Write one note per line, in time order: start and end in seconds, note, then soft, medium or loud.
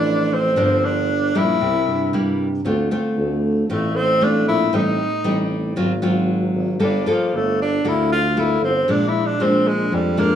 0.00 0.53 A1 medium
0.00 0.55 A2 medium
0.00 0.53 F3 medium
0.00 0.53 C4 medium
0.00 0.35 D4 medium
0.00 0.54 E4 medium
0.34 0.87 C4 medium
0.56 1.31 G1 loud
0.56 1.58 G2 medium
0.56 1.08 F3 medium
0.56 1.09 A#3 medium
0.56 1.09 D4 medium
0.85 1.38 D4 loud
1.35 1.60 A#1 medium
1.35 2.09 G3 medium
1.35 2.09 A#3 medium
1.35 2.09 E4 medium
1.35 2.14 E4 medium
1.61 1.85 C2 medium
1.61 2.62 C3 medium
1.88 2.61 G2 medium
2.13 2.47 G3 medium
2.13 2.47 A#3 medium
2.13 2.47 E4 medium
2.65 2.89 D2 medium
2.65 3.66 D3 medium
2.65 2.87 A3 medium
2.65 2.87 C4 medium
2.65 2.87 F4 medium
2.91 3.65 A3 medium
2.91 3.65 C4 medium
2.91 3.65 F4 medium
3.16 3.65 D2 medium
3.68 4.42 A1 medium
3.68 4.70 A2 soft
3.68 4.17 A3 soft
3.68 3.97 A3 medium
3.68 4.17 C4 medium
3.68 4.17 F4 medium
3.96 4.25 C4 loud
4.21 4.69 A3 medium
4.21 4.69 C4 medium
4.21 4.48 D4 medium
4.21 4.69 F4 medium
4.46 4.71 A#1 medium
4.46 4.77 E4 medium
4.72 4.96 A1 loud
4.72 5.74 A2 medium
4.72 5.06 G3 medium
4.72 5.06 C4 medium
4.72 5.07 D#4 medium
4.72 5.52 D#4 medium
5.24 5.73 A1 medium
5.24 5.74 G3 medium
5.24 5.74 C4 medium
5.24 5.75 D#4 medium
5.76 6.50 G#1 medium
5.76 6.77 G#2 medium
5.76 5.92 F#3 medium
5.76 5.92 C4 medium
5.76 5.92 F4 medium
6.02 6.78 F#3 medium
6.02 6.78 C4 medium
6.02 6.78 F4 medium
6.54 6.78 G#1 loud
6.79 7.05 G1 medium
6.79 7.81 G3 medium
6.79 7.02 A#3 medium
6.79 7.02 F4 medium
6.79 7.02 A4 medium
6.84 7.06 D4 medium
7.06 7.38 F3 medium
7.06 7.80 A#3 medium
7.06 7.80 F4 medium
7.06 7.80 A4 medium
7.32 7.80 G1 medium
7.32 7.60 A3 medium
7.62 7.90 D4 medium
7.84 8.58 D2 medium
7.84 8.85 D3 medium
7.84 8.18 A#3 medium
7.84 8.12 E4 medium
7.84 8.18 F4 soft
7.84 8.18 A4 medium
8.12 8.41 F4 loud
8.37 8.70 A#3 medium
8.37 8.64 E4 medium
8.37 8.70 F4 medium
8.37 8.70 A4 medium
8.62 8.86 G1 loud
8.62 8.93 C4 medium
8.88 9.12 A#1 medium
8.88 9.89 A#2 medium
8.88 9.35 F3 medium
8.88 9.36 G#3 medium
8.88 9.36 D4 medium
8.88 9.10 D4 medium
9.09 9.28 E4 medium
9.26 9.43 D4 medium
9.39 9.88 A#1 medium
9.39 10.13 F3 medium
9.39 10.13 G#3 medium
9.39 9.70 C4 medium
9.39 10.14 D4 medium
9.68 9.96 G#3 medium
9.91 10.35 F2 medium
9.91 10.21 G3 medium
10.17 10.35 F3 medium
10.17 10.35 G#3 medium
10.17 10.35 A#3 medium
10.17 10.35 D4 medium